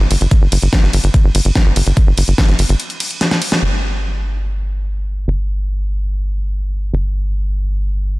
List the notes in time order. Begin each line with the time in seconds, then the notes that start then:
0.00 G1
0.11 G1, open hi-hat, ride
0.21 G1, closed hi-hat
0.31 kick, closed hi-hat
0.42 G1
0.52 G1, open hi-hat, ride
0.62 G1, closed hi-hat
0.73 kick, snare, closed hi-hat
0.83 G1, snare
0.93 G1, open hi-hat, ride
1.04 G1, closed hi-hat
1.14 kick, closed hi-hat
1.24 G1
1.35 G1, open hi-hat, ride
1.45 G1, closed hi-hat
1.55 kick, snare, closed hi-hat
1.66 G1
1.76 G1, open hi-hat, ride
1.86 G1, closed hi-hat
1.97 kick, closed hi-hat
2.07 G1
2.17 G1, open hi-hat, ride
2.28 G1, closed hi-hat
2.38 kick, snare, closed hi-hat
2.49 G1, snare, closed hi-hat
2.59 G1, open hi-hat, ride
2.69 G1, closed hi-hat
2.80 closed hi-hat
2.90 closed hi-hat
3.00 open hi-hat, ride
3.11 closed hi-hat
3.21 snare, closed hi-hat
3.31 snare, closed hi-hat
3.42 open hi-hat, ride
3.52 snare, closed hi-hat
3.62 G1
5.28 G1
6.93 G1